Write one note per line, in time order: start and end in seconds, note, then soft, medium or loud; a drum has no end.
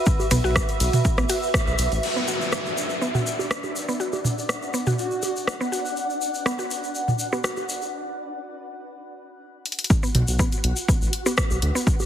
0.00 7.93 F#4 medium
0.00 7.93 B4 medium
0.00 3.18 E5 medium
0.06 kick loud
0.06 shaker soft
0.20 low bongo medium
0.20 shaker soft
0.31 0.40 B1 loud
0.31 0.36 B3 loud
0.31 closed hi-hat medium
0.31 mid tom medium
0.31 ride medium
0.31 shaker medium
0.44 0.60 B1 loud
0.44 0.48 F#4 medium
0.44 shaker soft
0.56 kick loud
0.56 cross-stick medium
0.56 shaker soft
0.69 closed hi-hat soft
0.69 shaker soft
0.80 0.89 B1 loud
0.80 closed hi-hat medium
0.80 ride medium
0.80 shaker medium
0.93 closed hi-hat soft
0.93 mid tom loud
0.93 shaker soft
1.05 kick loud
1.05 shaker soft
1.18 1.26 A1 medium
1.18 1.22 B3 loud
1.18 cross-stick medium
1.18 shaker soft
1.29 1.34 F#4 medium
1.29 closed hi-hat medium
1.29 ride medium
1.29 shaker medium
1.43 shaker soft
1.54 kick loud
1.54 cross-stick loud
1.54 shaker medium
1.67 1.75 B1 medium
1.67 shaker soft
1.79 1.87 B1 medium
1.79 closed hi-hat medium
1.79 ride medium
1.79 shaker medium
1.92 1.99 A1 loud
1.92 ride medium
1.92 shaker soft
2.03 7.93 D4 medium
2.03 7.93 D5 medium
2.03 crash medium
2.03 downlifter medium
2.03 shaker soft
2.16 2.20 B3 medium
2.16 shaker soft
2.28 2.32 F#4 medium
2.28 shaker medium
2.41 shaker soft
2.52 cross-stick medium
2.52 shaker soft
2.66 shaker soft
2.78 shaker medium
2.89 shaker soft
3.02 3.06 B3 medium
3.02 shaker soft
3.15 3.19 F#4 medium
3.15 mid tom medium
3.15 shaker soft
3.21 7.93 F#5 medium
3.27 shaker medium
3.39 low bongo medium
3.39 shaker soft
3.51 cross-stick medium
3.51 shaker soft
3.63 low bongo soft
3.63 shaker soft
3.76 shaker medium
3.88 3.93 B3 medium
3.88 shaker soft
4.00 4.05 F#4 medium
4.00 shaker soft
4.13 low bongo medium
4.13 shaker soft
4.24 mid tom medium
4.24 shaker medium
4.38 shaker soft
4.49 cross-stick medium
4.49 shaker soft
4.62 shaker soft
4.74 4.78 B3 medium
4.74 shaker medium
4.86 4.91 F#4 medium
4.86 mid tom medium
4.86 shaker soft
4.98 5.36 F#4 medium
4.98 shaker soft
5.11 shaker soft
5.23 low bongo medium
5.23 shaker medium
5.36 shaker soft
5.47 cross-stick medium
5.47 shaker soft
5.61 5.65 B3 loud
5.61 shaker soft
5.72 5.77 F#4 medium
5.72 shaker medium
5.85 shaker soft
5.97 shaker soft
6.10 shaker soft
6.22 shaker medium
6.34 shaker soft
6.46 6.50 B3 loud
6.46 cross-stick medium
6.46 shaker soft
6.59 6.63 F#4 medium
6.59 shaker soft
6.71 shaker medium
6.84 shaker soft
6.95 shaker soft
7.08 mid tom medium
7.08 shaker soft
7.19 shaker loud
7.32 7.37 B3 loud
7.32 low bongo medium
7.32 shaker soft
7.44 7.49 F#4 medium
7.44 cross-stick medium
7.44 shaker medium
7.57 low bongo soft
7.57 shaker soft
7.69 shaker medium
7.82 shaker soft
9.66 closed hi-hat soft
9.72 closed hi-hat medium
9.79 closed hi-hat medium
9.84 closed hi-hat medium
9.90 12.06 F#4 medium
9.90 12.06 F#5 medium
9.90 kick loud
9.90 shaker medium
10.03 10.06 B3 medium
10.03 shaker soft
10.15 10.23 B1 loud
10.15 12.06 B4 medium
10.15 closed hi-hat medium
10.15 mid tom medium
10.28 10.44 B1 loud
10.28 shaker medium
10.39 10.44 B3 medium
10.39 kick loud
10.39 shaker medium
10.52 closed hi-hat soft
10.52 shaker soft
10.64 10.73 B1 loud
10.64 closed hi-hat medium
10.76 shaker medium
10.88 10.91 B3 medium
10.88 kick loud
10.88 shaker medium
11.02 11.09 A1 medium
11.02 shaker soft
11.13 closed hi-hat medium
11.26 11.30 B3 medium
11.26 low bongo medium
11.26 shaker medium
11.37 kick loud
11.37 cross-stick loud
11.37 shaker medium
11.51 11.58 B1 loud
11.51 low bongo soft
11.51 shaker soft
11.62 11.71 D2 medium
11.62 closed hi-hat medium
11.75 11.78 B3 medium
11.75 shaker medium
11.87 kick loud
11.87 shaker medium
12.00 low bongo medium
12.00 shaker soft